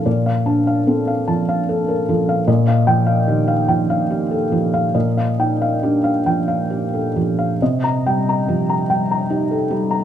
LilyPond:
<<
  \new Staff \with { instrumentName = "Felt piano" } { \time 6/8 \key ees \lydian \tempo 4. = 48 << { r2. | r8 g''8 r2 | r2. | r16 bes''8 r2 r16 | } \\ { <d'' f''>16 f''16 a''16 f''16 a'16 f''16 a''16 f''16 a'16 bes'16 a'16 f''16 | ees''16 f''8 f''16 g'16 f''16 g''16 f''16 g'16 a'16 g'16 f''16 | ees''16 f''16 g''16 f''16 g'16 f''16 g''16 f''16 g'16 a'16 g'16 f''16 | ees''8 g''16 bes''16 g'16 bes''16 g''16 bes''16 g'16 a'16 g'16 bes''16 | } >> }
  \new Staff \with { instrumentName = "Felt piano" } { \clef bass \time 6/8 \key ees \lydian <bes, f>8 d'8 c'8 f4 f8 | bes,8 f8 ees8 f4 f8 | bes,8 ees'8 d'8 f4 f8 | c8 g8 f8 g8 ees'8 g8 | }
>>